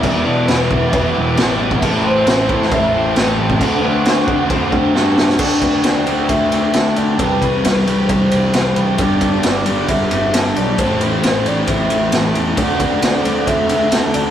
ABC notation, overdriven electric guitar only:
X:1
M:4/4
L:1/8
Q:1/4=134
K:Dmix
V:1 name="Overdriven electric guitar"
[E,,B,,E,G,B,E] [E,G,B,E] [E,G,B,E] [E,G,B,E]3 [E,G,B,E] [E,G,B,E] | [A,,E,A,CE] [A,CE] [E,A,CE] [A,CE]3 [E,A,CE] [A,CE] | [D,A,CF] [A,CF] [D,A,CF] [A,CF]3 [D,A,CF] [A,CF] | [D,A,CF]8 |
[C,E,G,CG]8 | [G,,D,G,B,DG]8 | [A,,E,A,CE]8 | [D,A,CF]8 |]